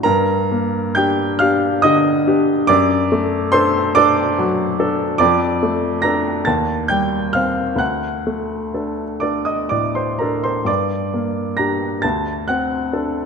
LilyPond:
\new Staff \with { instrumentName = "Grand piano" } { \time 6/8 \key g \minor \tempo 4. = 46 << { <bes' bes''>4 <g'' g'''>8 <f'' f'''>8 <ees'' ees'''>4 | <d'' d'''>4 <c'' c'''>8 <d'' d'''>4. | <d'' d'''>4 <bes'' bes'''>8 <a'' a'''>8 <g'' g'''>8 <f'' f'''>8 | <fis'' fis'''>4. <d'' d'''>16 <ees'' ees'''>16 <d'' d'''>16 <c'' c'''>16 <bes' bes''>16 <c'' c'''>16 |
<d'' d'''>4 <bes'' bes'''>8 <a'' a'''>8 <fis'' fis'''>4 | } \\ { g,8 bes8 <d' g'>8 <d' g'>8 d8 <d' g'>8 | fis,8 a8 <d' a'>8 <d' a'>8 fis8 <d' a'>8 | f,8 a8 <d' a'>8 ees,8 g8 <c' c''>8 | d,8 a8 <d' a'>8 <d' a'>8 a,8 <d' a'>8 |
g,8 bes8 <d' g'>8 d,8 c'8 <d' a'>8 | } >> }